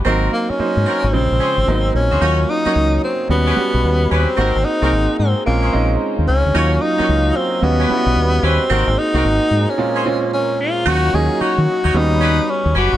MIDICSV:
0, 0, Header, 1, 7, 480
1, 0, Start_track
1, 0, Tempo, 540541
1, 47, Time_signature, 4, 2, 24, 8
1, 11517, End_track
2, 0, Start_track
2, 0, Title_t, "Analog synth pad"
2, 0, Program_c, 0, 89
2, 1971, Note_on_c, 0, 73, 74
2, 1971, Note_on_c, 0, 75, 78
2, 1973, Note_on_c, 0, 54, 84
2, 1973, Note_on_c, 0, 82, 86
2, 2920, Note_off_c, 0, 82, 0
2, 2921, Note_off_c, 0, 54, 0
2, 2936, Note_on_c, 0, 55, 84
2, 2938, Note_on_c, 0, 83, 92
2, 3870, Note_off_c, 0, 73, 0
2, 3870, Note_off_c, 0, 75, 0
2, 3879, Note_on_c, 0, 68, 92
2, 3879, Note_on_c, 0, 82, 94
2, 3880, Note_on_c, 0, 72, 74
2, 3881, Note_on_c, 0, 78, 69
2, 3882, Note_off_c, 0, 55, 0
2, 3883, Note_off_c, 0, 83, 0
2, 4834, Note_off_c, 0, 72, 0
2, 4835, Note_off_c, 0, 78, 0
2, 4855, Note_on_c, 0, 72, 71
2, 4856, Note_on_c, 0, 77, 80
2, 5784, Note_off_c, 0, 68, 0
2, 5784, Note_off_c, 0, 82, 0
2, 5802, Note_off_c, 0, 72, 0
2, 5810, Note_on_c, 0, 54, 78
2, 5811, Note_on_c, 0, 82, 88
2, 5813, Note_on_c, 0, 75, 78
2, 6759, Note_off_c, 0, 54, 0
2, 6759, Note_off_c, 0, 82, 0
2, 6777, Note_on_c, 0, 55, 81
2, 6778, Note_on_c, 0, 83, 91
2, 7703, Note_off_c, 0, 77, 0
2, 7711, Note_off_c, 0, 75, 0
2, 7722, Note_off_c, 0, 55, 0
2, 7723, Note_off_c, 0, 83, 0
2, 7727, Note_on_c, 0, 78, 75
2, 7728, Note_on_c, 0, 68, 88
2, 7729, Note_on_c, 0, 72, 78
2, 7729, Note_on_c, 0, 82, 97
2, 8677, Note_off_c, 0, 78, 0
2, 8688, Note_on_c, 0, 70, 77
2, 9628, Note_off_c, 0, 68, 0
2, 9629, Note_off_c, 0, 72, 0
2, 9629, Note_off_c, 0, 82, 0
2, 9638, Note_off_c, 0, 70, 0
2, 9648, Note_on_c, 0, 73, 80
2, 9648, Note_on_c, 0, 75, 79
2, 9649, Note_on_c, 0, 66, 83
2, 9651, Note_on_c, 0, 82, 91
2, 10598, Note_off_c, 0, 66, 0
2, 10599, Note_off_c, 0, 82, 0
2, 10612, Note_on_c, 0, 83, 94
2, 10614, Note_on_c, 0, 55, 78
2, 11517, Note_off_c, 0, 55, 0
2, 11517, Note_off_c, 0, 73, 0
2, 11517, Note_off_c, 0, 75, 0
2, 11517, Note_off_c, 0, 83, 0
2, 11517, End_track
3, 0, Start_track
3, 0, Title_t, "Horn section"
3, 0, Program_c, 1, 61
3, 42, Note_on_c, 1, 60, 95
3, 44, Note_on_c, 1, 66, 79
3, 47, Note_on_c, 1, 70, 95
3, 270, Note_off_c, 1, 60, 0
3, 271, Note_off_c, 1, 66, 0
3, 273, Note_off_c, 1, 70, 0
3, 766, Note_on_c, 1, 60, 80
3, 767, Note_on_c, 1, 66, 72
3, 770, Note_on_c, 1, 70, 82
3, 913, Note_off_c, 1, 60, 0
3, 913, Note_off_c, 1, 66, 0
3, 915, Note_off_c, 1, 70, 0
3, 1242, Note_on_c, 1, 61, 77
3, 1244, Note_on_c, 1, 68, 69
3, 1248, Note_on_c, 1, 72, 80
3, 1391, Note_off_c, 1, 61, 0
3, 1392, Note_off_c, 1, 68, 0
3, 1394, Note_off_c, 1, 72, 0
3, 1876, Note_on_c, 1, 66, 73
3, 1876, Note_on_c, 1, 68, 68
3, 1879, Note_on_c, 1, 72, 75
3, 1952, Note_off_c, 1, 66, 0
3, 1961, Note_on_c, 1, 63, 91
3, 1962, Note_off_c, 1, 68, 0
3, 1962, Note_on_c, 1, 66, 83
3, 1964, Note_off_c, 1, 72, 0
3, 1966, Note_on_c, 1, 73, 103
3, 2110, Note_off_c, 1, 63, 0
3, 2111, Note_off_c, 1, 66, 0
3, 2113, Note_off_c, 1, 73, 0
3, 2354, Note_on_c, 1, 63, 78
3, 2357, Note_on_c, 1, 66, 76
3, 2360, Note_on_c, 1, 73, 88
3, 2441, Note_off_c, 1, 63, 0
3, 2443, Note_off_c, 1, 66, 0
3, 2444, Note_off_c, 1, 73, 0
3, 3074, Note_on_c, 1, 61, 76
3, 3076, Note_on_c, 1, 67, 68
3, 3078, Note_on_c, 1, 71, 77
3, 3161, Note_off_c, 1, 61, 0
3, 3162, Note_off_c, 1, 67, 0
3, 3163, Note_off_c, 1, 71, 0
3, 3643, Note_on_c, 1, 61, 76
3, 3646, Note_on_c, 1, 67, 69
3, 3647, Note_on_c, 1, 71, 85
3, 3792, Note_off_c, 1, 61, 0
3, 3793, Note_off_c, 1, 67, 0
3, 3793, Note_off_c, 1, 71, 0
3, 3879, Note_on_c, 1, 60, 93
3, 3883, Note_on_c, 1, 66, 83
3, 3885, Note_on_c, 1, 70, 99
3, 4030, Note_off_c, 1, 60, 0
3, 4031, Note_off_c, 1, 66, 0
3, 4033, Note_off_c, 1, 70, 0
3, 4277, Note_on_c, 1, 60, 78
3, 4279, Note_on_c, 1, 66, 72
3, 4281, Note_on_c, 1, 70, 87
3, 4363, Note_off_c, 1, 60, 0
3, 4364, Note_off_c, 1, 66, 0
3, 4365, Note_off_c, 1, 70, 0
3, 4995, Note_on_c, 1, 61, 70
3, 4999, Note_on_c, 1, 68, 64
3, 5000, Note_on_c, 1, 72, 81
3, 5082, Note_off_c, 1, 61, 0
3, 5084, Note_off_c, 1, 68, 0
3, 5085, Note_off_c, 1, 72, 0
3, 5804, Note_on_c, 1, 63, 98
3, 5806, Note_on_c, 1, 66, 78
3, 5809, Note_on_c, 1, 73, 105
3, 5952, Note_off_c, 1, 63, 0
3, 5953, Note_off_c, 1, 66, 0
3, 5954, Note_off_c, 1, 73, 0
3, 6198, Note_on_c, 1, 63, 83
3, 6201, Note_on_c, 1, 66, 76
3, 6204, Note_on_c, 1, 73, 92
3, 6284, Note_off_c, 1, 63, 0
3, 6285, Note_off_c, 1, 66, 0
3, 6286, Note_off_c, 1, 73, 0
3, 6917, Note_on_c, 1, 61, 73
3, 6920, Note_on_c, 1, 67, 70
3, 6923, Note_on_c, 1, 71, 85
3, 7003, Note_off_c, 1, 61, 0
3, 7004, Note_off_c, 1, 67, 0
3, 7006, Note_off_c, 1, 71, 0
3, 7480, Note_on_c, 1, 61, 80
3, 7484, Note_on_c, 1, 67, 73
3, 7487, Note_on_c, 1, 71, 85
3, 7630, Note_off_c, 1, 61, 0
3, 7632, Note_off_c, 1, 67, 0
3, 7633, Note_off_c, 1, 71, 0
3, 7725, Note_on_c, 1, 60, 93
3, 7728, Note_on_c, 1, 66, 86
3, 7729, Note_on_c, 1, 70, 100
3, 7872, Note_off_c, 1, 60, 0
3, 7874, Note_off_c, 1, 66, 0
3, 7874, Note_off_c, 1, 70, 0
3, 8115, Note_on_c, 1, 60, 75
3, 8118, Note_on_c, 1, 66, 77
3, 8121, Note_on_c, 1, 70, 86
3, 8202, Note_off_c, 1, 60, 0
3, 8204, Note_off_c, 1, 66, 0
3, 8205, Note_off_c, 1, 70, 0
3, 8833, Note_on_c, 1, 61, 81
3, 8836, Note_on_c, 1, 68, 68
3, 8839, Note_on_c, 1, 72, 84
3, 8921, Note_off_c, 1, 61, 0
3, 8923, Note_off_c, 1, 68, 0
3, 8924, Note_off_c, 1, 72, 0
3, 9643, Note_on_c, 1, 63, 98
3, 9644, Note_on_c, 1, 66, 82
3, 9647, Note_on_c, 1, 73, 100
3, 9871, Note_off_c, 1, 63, 0
3, 9871, Note_off_c, 1, 66, 0
3, 9873, Note_off_c, 1, 73, 0
3, 10120, Note_on_c, 1, 63, 77
3, 10123, Note_on_c, 1, 66, 66
3, 10126, Note_on_c, 1, 73, 84
3, 10270, Note_off_c, 1, 63, 0
3, 10271, Note_off_c, 1, 66, 0
3, 10273, Note_off_c, 1, 73, 0
3, 10511, Note_on_c, 1, 63, 79
3, 10514, Note_on_c, 1, 66, 72
3, 10516, Note_on_c, 1, 73, 90
3, 10600, Note_off_c, 1, 63, 0
3, 10602, Note_off_c, 1, 66, 0
3, 10602, Note_off_c, 1, 73, 0
3, 10838, Note_on_c, 1, 61, 82
3, 10842, Note_on_c, 1, 67, 72
3, 10844, Note_on_c, 1, 71, 93
3, 10989, Note_off_c, 1, 61, 0
3, 10991, Note_off_c, 1, 67, 0
3, 10992, Note_off_c, 1, 71, 0
3, 11322, Note_on_c, 1, 61, 78
3, 11324, Note_on_c, 1, 67, 78
3, 11328, Note_on_c, 1, 71, 84
3, 11471, Note_off_c, 1, 61, 0
3, 11472, Note_off_c, 1, 67, 0
3, 11474, Note_off_c, 1, 71, 0
3, 11517, End_track
4, 0, Start_track
4, 0, Title_t, "Tenor saxophone"
4, 0, Program_c, 2, 66
4, 290, Note_on_c, 2, 58, 92
4, 440, Note_on_c, 2, 61, 104
4, 454, Note_off_c, 2, 58, 0
4, 1007, Note_on_c, 2, 60, 106
4, 1021, Note_off_c, 2, 61, 0
4, 1727, Note_off_c, 2, 60, 0
4, 1738, Note_on_c, 2, 61, 105
4, 2216, Note_on_c, 2, 63, 112
4, 2229, Note_off_c, 2, 61, 0
4, 2692, Note_off_c, 2, 63, 0
4, 2697, Note_on_c, 2, 60, 88
4, 2916, Note_off_c, 2, 60, 0
4, 2936, Note_on_c, 2, 59, 106
4, 3651, Note_on_c, 2, 60, 100
4, 3665, Note_off_c, 2, 59, 0
4, 4127, Note_on_c, 2, 63, 113
4, 4141, Note_off_c, 2, 60, 0
4, 4605, Note_off_c, 2, 63, 0
4, 4610, Note_on_c, 2, 60, 80
4, 4832, Note_off_c, 2, 60, 0
4, 4848, Note_on_c, 2, 58, 80
4, 5294, Note_off_c, 2, 58, 0
4, 5574, Note_on_c, 2, 61, 109
4, 6050, Note_on_c, 2, 63, 108
4, 6064, Note_off_c, 2, 61, 0
4, 6537, Note_on_c, 2, 60, 94
4, 6550, Note_off_c, 2, 63, 0
4, 6777, Note_on_c, 2, 59, 105
4, 6790, Note_off_c, 2, 60, 0
4, 7495, Note_on_c, 2, 60, 107
4, 7508, Note_off_c, 2, 59, 0
4, 7977, Note_on_c, 2, 63, 115
4, 7990, Note_off_c, 2, 60, 0
4, 8608, Note_on_c, 2, 61, 90
4, 8622, Note_off_c, 2, 63, 0
4, 9172, Note_off_c, 2, 61, 0
4, 9176, Note_on_c, 2, 61, 100
4, 9419, Note_on_c, 2, 65, 105
4, 9432, Note_off_c, 2, 61, 0
4, 9657, Note_on_c, 2, 66, 121
4, 9671, Note_off_c, 2, 65, 0
4, 9902, Note_on_c, 2, 68, 106
4, 9916, Note_off_c, 2, 66, 0
4, 10140, Note_on_c, 2, 66, 108
4, 10153, Note_off_c, 2, 68, 0
4, 10625, Note_on_c, 2, 63, 106
4, 10638, Note_off_c, 2, 66, 0
4, 11098, Note_on_c, 2, 61, 97
4, 11111, Note_off_c, 2, 63, 0
4, 11332, Note_off_c, 2, 61, 0
4, 11343, Note_on_c, 2, 66, 100
4, 11517, Note_off_c, 2, 66, 0
4, 11517, End_track
5, 0, Start_track
5, 0, Title_t, "Grand piano"
5, 0, Program_c, 3, 0
5, 0, Control_c, 3, 64, 127
5, 42, Note_on_c, 3, 54, 80
5, 46, Note_on_c, 3, 58, 73
5, 48, Note_on_c, 3, 60, 73
5, 54, Note_on_c, 3, 63, 83
5, 60, Control_c, 3, 64, 0
5, 215, Control_c, 3, 64, 127
5, 443, Note_off_c, 3, 54, 0
5, 445, Note_off_c, 3, 58, 0
5, 446, Note_off_c, 3, 60, 0
5, 449, Note_off_c, 3, 63, 0
5, 525, Note_on_c, 3, 54, 74
5, 526, Note_on_c, 3, 58, 65
5, 530, Note_on_c, 3, 72, 71
5, 533, Note_on_c, 3, 63, 81
5, 1004, Note_on_c, 3, 53, 72
5, 1006, Note_off_c, 3, 54, 0
5, 1006, Note_off_c, 3, 58, 0
5, 1006, Note_on_c, 3, 56, 59
5, 1008, Note_off_c, 3, 72, 0
5, 1008, Note_on_c, 3, 60, 66
5, 1010, Note_off_c, 3, 63, 0
5, 1011, Note_on_c, 3, 49, 82
5, 1019, Control_c, 3, 64, 0
5, 1155, Control_c, 3, 64, 127
5, 1415, Note_off_c, 3, 53, 0
5, 1416, Note_off_c, 3, 56, 0
5, 1417, Note_off_c, 3, 60, 0
5, 1419, Note_off_c, 3, 49, 0
5, 1482, Note_on_c, 3, 54, 71
5, 1485, Note_on_c, 3, 58, 70
5, 1490, Note_on_c, 3, 59, 58
5, 1494, Note_on_c, 3, 63, 80
5, 1499, Control_c, 3, 64, 0
5, 1547, Note_on_c, 3, 60, 67
5, 1561, Note_off_c, 3, 59, 0
5, 1659, Control_c, 3, 64, 127
5, 1894, Note_off_c, 3, 54, 0
5, 1895, Note_off_c, 3, 58, 0
5, 1900, Note_off_c, 3, 63, 0
5, 1927, Note_off_c, 3, 60, 0
5, 1963, Note_on_c, 3, 54, 69
5, 1964, Note_on_c, 3, 58, 64
5, 1968, Note_on_c, 3, 61, 65
5, 1971, Note_on_c, 3, 65, 76
5, 1980, Control_c, 3, 64, 0
5, 2128, Control_c, 3, 64, 127
5, 2251, Note_off_c, 3, 54, 0
5, 2252, Note_off_c, 3, 58, 0
5, 2254, Note_off_c, 3, 61, 0
5, 2255, Note_off_c, 3, 65, 0
5, 2354, Note_on_c, 3, 54, 71
5, 2359, Note_on_c, 3, 58, 69
5, 2362, Note_on_c, 3, 61, 66
5, 2367, Note_on_c, 3, 63, 80
5, 2917, Note_off_c, 3, 61, 0
5, 2922, Note_on_c, 3, 55, 68
5, 2925, Note_off_c, 3, 54, 0
5, 2927, Note_off_c, 3, 58, 0
5, 2927, Note_on_c, 3, 59, 66
5, 2930, Note_on_c, 3, 61, 67
5, 2931, Note_off_c, 3, 63, 0
5, 2932, Note_on_c, 3, 66, 83
5, 2937, Control_c, 3, 64, 0
5, 3082, Control_c, 3, 64, 127
5, 3129, Note_off_c, 3, 55, 0
5, 3132, Note_off_c, 3, 59, 0
5, 3133, Note_off_c, 3, 61, 0
5, 3134, Note_off_c, 3, 66, 0
5, 3164, Note_on_c, 3, 55, 80
5, 3166, Note_on_c, 3, 59, 70
5, 3171, Note_on_c, 3, 61, 79
5, 3175, Note_on_c, 3, 66, 94
5, 3738, Note_off_c, 3, 55, 0
5, 3739, Note_off_c, 3, 59, 0
5, 3741, Note_off_c, 3, 61, 0
5, 3743, Note_off_c, 3, 66, 0
5, 3884, Note_on_c, 3, 58, 65
5, 3888, Note_on_c, 3, 60, 63
5, 3891, Note_on_c, 3, 63, 64
5, 3895, Note_on_c, 3, 66, 83
5, 3897, Control_c, 3, 64, 0
5, 4078, Control_c, 3, 64, 127
5, 4171, Note_off_c, 3, 58, 0
5, 4174, Note_off_c, 3, 60, 0
5, 4175, Note_off_c, 3, 63, 0
5, 4177, Note_off_c, 3, 66, 0
5, 4276, Note_on_c, 3, 58, 74
5, 4279, Note_on_c, 3, 60, 68
5, 4281, Note_on_c, 3, 63, 66
5, 4286, Note_on_c, 3, 68, 77
5, 4839, Note_off_c, 3, 60, 0
5, 4845, Note_off_c, 3, 58, 0
5, 4848, Note_off_c, 3, 63, 0
5, 4849, Note_on_c, 3, 56, 72
5, 4851, Note_off_c, 3, 68, 0
5, 4852, Note_on_c, 3, 60, 61
5, 4855, Note_on_c, 3, 61, 66
5, 4858, Note_on_c, 3, 65, 85
5, 4859, Control_c, 3, 64, 0
5, 4992, Control_c, 3, 64, 127
5, 5053, Note_off_c, 3, 56, 0
5, 5054, Note_off_c, 3, 60, 0
5, 5055, Note_off_c, 3, 61, 0
5, 5057, Note_off_c, 3, 65, 0
5, 5083, Note_on_c, 3, 56, 83
5, 5087, Note_on_c, 3, 60, 76
5, 5089, Note_on_c, 3, 61, 74
5, 5094, Note_on_c, 3, 63, 93
5, 5657, Note_off_c, 3, 56, 0
5, 5659, Note_off_c, 3, 60, 0
5, 5660, Note_off_c, 3, 61, 0
5, 5663, Note_off_c, 3, 63, 0
5, 5805, Note_on_c, 3, 54, 72
5, 5809, Note_on_c, 3, 58, 64
5, 5813, Note_on_c, 3, 61, 62
5, 5816, Note_on_c, 3, 65, 81
5, 5820, Control_c, 3, 64, 0
5, 5949, Control_c, 3, 64, 127
5, 6092, Note_off_c, 3, 54, 0
5, 6094, Note_off_c, 3, 58, 0
5, 6096, Note_off_c, 3, 61, 0
5, 6098, Note_off_c, 3, 65, 0
5, 6198, Note_on_c, 3, 54, 77
5, 6203, Note_on_c, 3, 58, 66
5, 6206, Note_on_c, 3, 61, 69
5, 6209, Note_on_c, 3, 65, 85
5, 6759, Note_off_c, 3, 61, 0
5, 6766, Note_on_c, 3, 55, 69
5, 6767, Note_off_c, 3, 54, 0
5, 6769, Note_off_c, 3, 58, 0
5, 6769, Note_on_c, 3, 59, 70
5, 6772, Note_off_c, 3, 65, 0
5, 6772, Note_on_c, 3, 61, 70
5, 6777, Control_c, 3, 64, 0
5, 6777, Note_on_c, 3, 66, 81
5, 6958, Control_c, 3, 64, 127
5, 6971, Note_off_c, 3, 55, 0
5, 6973, Note_off_c, 3, 59, 0
5, 6974, Note_off_c, 3, 61, 0
5, 6977, Note_off_c, 3, 66, 0
5, 7006, Note_on_c, 3, 55, 78
5, 7009, Note_on_c, 3, 59, 81
5, 7012, Note_on_c, 3, 61, 79
5, 7016, Note_on_c, 3, 64, 75
5, 7073, Note_on_c, 3, 66, 92
5, 7084, Note_off_c, 3, 64, 0
5, 7579, Note_off_c, 3, 55, 0
5, 7580, Note_off_c, 3, 59, 0
5, 7582, Note_off_c, 3, 61, 0
5, 7612, Note_off_c, 3, 66, 0
5, 7726, Note_on_c, 3, 58, 65
5, 7727, Note_on_c, 3, 60, 62
5, 7732, Note_on_c, 3, 63, 62
5, 7734, Note_on_c, 3, 66, 81
5, 7738, Control_c, 3, 64, 0
5, 7895, Control_c, 3, 64, 127
5, 8012, Note_off_c, 3, 58, 0
5, 8013, Note_off_c, 3, 60, 0
5, 8016, Note_off_c, 3, 63, 0
5, 8016, Note_off_c, 3, 66, 0
5, 8115, Note_on_c, 3, 58, 74
5, 8119, Note_on_c, 3, 60, 70
5, 8123, Note_on_c, 3, 63, 70
5, 8127, Note_on_c, 3, 66, 86
5, 8676, Note_off_c, 3, 60, 0
5, 8684, Note_on_c, 3, 46, 81
5, 8685, Note_off_c, 3, 58, 0
5, 8688, Note_on_c, 3, 56, 69
5, 8689, Note_off_c, 3, 63, 0
5, 8689, Note_on_c, 3, 60, 68
5, 8691, Note_off_c, 3, 66, 0
5, 8692, Note_on_c, 3, 61, 68
5, 8695, Note_on_c, 3, 65, 85
5, 8699, Control_c, 3, 64, 0
5, 8836, Control_c, 3, 64, 127
5, 8890, Note_off_c, 3, 46, 0
5, 8892, Note_off_c, 3, 56, 0
5, 8893, Note_off_c, 3, 60, 0
5, 8894, Note_off_c, 3, 61, 0
5, 8896, Note_off_c, 3, 65, 0
5, 8929, Note_on_c, 3, 46, 85
5, 8932, Note_on_c, 3, 56, 75
5, 8932, Note_on_c, 3, 60, 80
5, 8935, Note_on_c, 3, 61, 75
5, 8940, Note_on_c, 3, 65, 89
5, 9500, Note_off_c, 3, 46, 0
5, 9502, Note_off_c, 3, 56, 0
5, 9502, Note_off_c, 3, 60, 0
5, 9503, Note_off_c, 3, 61, 0
5, 9506, Note_off_c, 3, 65, 0
5, 9641, Note_on_c, 3, 54, 66
5, 9646, Note_on_c, 3, 58, 64
5, 9650, Note_on_c, 3, 61, 67
5, 9653, Note_on_c, 3, 65, 77
5, 9660, Control_c, 3, 64, 0
5, 9809, Control_c, 3, 64, 127
5, 9843, Note_off_c, 3, 54, 0
5, 9846, Note_off_c, 3, 58, 0
5, 9848, Note_off_c, 3, 61, 0
5, 9849, Note_off_c, 3, 65, 0
5, 9885, Note_on_c, 3, 54, 78
5, 9887, Note_on_c, 3, 58, 71
5, 9890, Note_on_c, 3, 61, 73
5, 9894, Note_on_c, 3, 63, 86
5, 10598, Note_off_c, 3, 61, 0
5, 10604, Note_on_c, 3, 55, 80
5, 10606, Note_off_c, 3, 54, 0
5, 10607, Note_off_c, 3, 58, 0
5, 10608, Note_on_c, 3, 59, 67
5, 10610, Note_off_c, 3, 63, 0
5, 10612, Note_on_c, 3, 61, 69
5, 10615, Note_on_c, 3, 66, 78
5, 10618, Control_c, 3, 64, 0
5, 10773, Control_c, 3, 64, 127
5, 11386, Note_off_c, 3, 55, 0
5, 11388, Note_off_c, 3, 59, 0
5, 11390, Note_off_c, 3, 61, 0
5, 11392, Note_off_c, 3, 66, 0
5, 11517, End_track
6, 0, Start_track
6, 0, Title_t, "Fingered electric bass"
6, 0, Program_c, 4, 33
6, 49, Note_on_c, 4, 32, 99
6, 245, Note_off_c, 4, 32, 0
6, 683, Note_on_c, 4, 44, 90
6, 753, Note_off_c, 4, 44, 0
6, 924, Note_on_c, 4, 32, 98
6, 994, Note_off_c, 4, 32, 0
6, 1011, Note_on_c, 4, 34, 89
6, 1134, Note_off_c, 4, 34, 0
6, 1165, Note_on_c, 4, 34, 82
6, 1235, Note_off_c, 4, 34, 0
6, 1399, Note_on_c, 4, 32, 73
6, 1471, Note_off_c, 4, 32, 0
6, 1490, Note_on_c, 4, 32, 101
6, 1685, Note_off_c, 4, 32, 0
6, 1727, Note_on_c, 4, 34, 98
6, 1852, Note_off_c, 4, 34, 0
6, 1883, Note_on_c, 4, 38, 80
6, 1954, Note_off_c, 4, 38, 0
6, 1968, Note_on_c, 4, 39, 103
6, 2165, Note_off_c, 4, 39, 0
6, 2448, Note_on_c, 4, 37, 88
6, 2644, Note_off_c, 4, 37, 0
6, 2925, Note_on_c, 4, 39, 91
6, 3123, Note_off_c, 4, 39, 0
6, 3324, Note_on_c, 4, 35, 91
6, 3394, Note_off_c, 4, 35, 0
6, 3412, Note_on_c, 4, 39, 91
6, 3606, Note_off_c, 4, 39, 0
6, 3653, Note_on_c, 4, 39, 96
6, 3775, Note_off_c, 4, 39, 0
6, 3890, Note_on_c, 4, 32, 102
6, 4013, Note_off_c, 4, 32, 0
6, 4045, Note_on_c, 4, 32, 103
6, 4115, Note_off_c, 4, 32, 0
6, 4282, Note_on_c, 4, 36, 92
6, 4353, Note_off_c, 4, 36, 0
6, 4375, Note_on_c, 4, 32, 96
6, 4496, Note_off_c, 4, 32, 0
6, 4612, Note_on_c, 4, 44, 96
6, 4735, Note_off_c, 4, 44, 0
6, 4860, Note_on_c, 4, 34, 92
6, 5052, Note_off_c, 4, 34, 0
6, 5102, Note_on_c, 4, 34, 93
6, 5292, Note_off_c, 4, 34, 0
6, 5493, Note_on_c, 4, 39, 82
6, 5560, Note_off_c, 4, 39, 0
6, 5581, Note_on_c, 4, 37, 92
6, 5700, Note_off_c, 4, 37, 0
6, 5731, Note_on_c, 4, 38, 74
6, 5798, Note_off_c, 4, 38, 0
6, 5820, Note_on_c, 4, 39, 114
6, 6011, Note_off_c, 4, 39, 0
6, 6297, Note_on_c, 4, 37, 99
6, 6489, Note_off_c, 4, 37, 0
6, 6771, Note_on_c, 4, 39, 93
6, 6966, Note_off_c, 4, 39, 0
6, 7160, Note_on_c, 4, 35, 88
6, 7232, Note_off_c, 4, 35, 0
6, 7248, Note_on_c, 4, 39, 90
6, 7444, Note_off_c, 4, 39, 0
6, 7486, Note_on_c, 4, 39, 94
6, 7611, Note_off_c, 4, 39, 0
6, 7730, Note_on_c, 4, 32, 102
6, 7853, Note_off_c, 4, 32, 0
6, 7879, Note_on_c, 4, 32, 100
6, 7951, Note_off_c, 4, 32, 0
6, 8118, Note_on_c, 4, 36, 95
6, 8191, Note_off_c, 4, 36, 0
6, 8209, Note_on_c, 4, 32, 109
6, 8333, Note_off_c, 4, 32, 0
6, 8445, Note_on_c, 4, 44, 94
6, 8570, Note_off_c, 4, 44, 0
6, 9649, Note_on_c, 4, 39, 103
6, 9845, Note_off_c, 4, 39, 0
6, 9890, Note_on_c, 4, 39, 114
6, 10013, Note_off_c, 4, 39, 0
6, 10285, Note_on_c, 4, 51, 90
6, 10355, Note_off_c, 4, 51, 0
6, 10521, Note_on_c, 4, 39, 96
6, 10592, Note_off_c, 4, 39, 0
6, 10605, Note_on_c, 4, 39, 98
6, 10999, Note_off_c, 4, 39, 0
6, 11238, Note_on_c, 4, 39, 92
6, 11311, Note_off_c, 4, 39, 0
6, 11325, Note_on_c, 4, 30, 96
6, 11450, Note_off_c, 4, 30, 0
6, 11475, Note_on_c, 4, 31, 87
6, 11517, Note_off_c, 4, 31, 0
6, 11517, End_track
7, 0, Start_track
7, 0, Title_t, "Muted fingered electric bass strokes"
7, 443, Note_on_c, 9, 29, 46
7, 529, Note_off_c, 9, 29, 0
7, 529, Note_on_c, 9, 29, 47
7, 618, Note_off_c, 9, 29, 0
7, 2361, Note_on_c, 9, 29, 51
7, 2450, Note_off_c, 9, 29, 0
7, 3171, Note_on_c, 9, 29, 48
7, 3259, Note_off_c, 9, 29, 0
7, 6213, Note_on_c, 9, 29, 50
7, 6302, Note_off_c, 9, 29, 0
7, 7018, Note_on_c, 9, 29, 46
7, 7107, Note_off_c, 9, 29, 0
7, 10132, Note_on_c, 9, 29, 50
7, 10221, Note_off_c, 9, 29, 0
7, 11517, End_track
0, 0, End_of_file